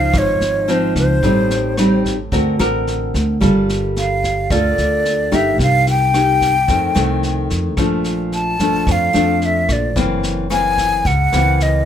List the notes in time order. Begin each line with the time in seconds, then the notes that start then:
Already playing: C#3 F3 D#4 F5
0.13 G#1 G#2, kick, cross-stick, snare
0.18 C#5
0.40 G#1, snare
0.68 F3 C4 D#4 C5, snare
0.96 C#2 C5, kick, cross-stick, snare
1.23 A1 A2 G3 C4 D#4, kick, snare
1.50 snare
1.77 G3 C4 D#4, cross-stick, snare
2.05 kick, snare
2.32 D2 D3 C4 F#4 A#4, kick, snare
2.59 A1 C4 F#4 A#4, cross-stick, snare
2.87 snare
3.14 D2, kick, snare
3.41 G1 G3 A#3 F4 A4, kick, cross-stick, snare
3.69 snare
3.96 F5, snare
4.23 kick, snare
4.50 D2 D3 A#3 F4 A4 D5, kick, cross-stick, snare
4.78 D2, snare
5.05 snare
5.32 G1 A#3 D#4 G4 E5, kick, cross-stick, snare
5.58 C2 C3 F5, kick, snare
5.87 G5, snare
6.14 A#3 D#4 G4, cross-stick, snare
6.41 kick, snare
6.68 F2 D#3 A3 C4, kick, snare
6.95 C2 D#3 A3 C4, cross-stick, snare
7.23 snare
7.50 F2, kick, snare
7.77 A#1 A#2 F3 A3 D4, kick, cross-stick, snare
8.04 snare
8.32 A5, snare
8.59 F3 A3 D4, kick, snare
8.87 F2, kick, cross-stick, snare
8.92 F5
9.13 F2 F3 A3 D4, snare
9.42 E5, snare
9.69 A#1 D5, kick, cross-stick, snare
9.96 F#1 F#2 E3 A#3 C4, kick, snare
10.23 snare
10.50 E3 A#3 C4 G#5, cross-stick, snare
10.78 kick, snare
11.05 C#2 C#3 F#5, kick, snare
11.33 C#2 E3 A#3 C4, cross-stick, snare
11.60 D#5, snare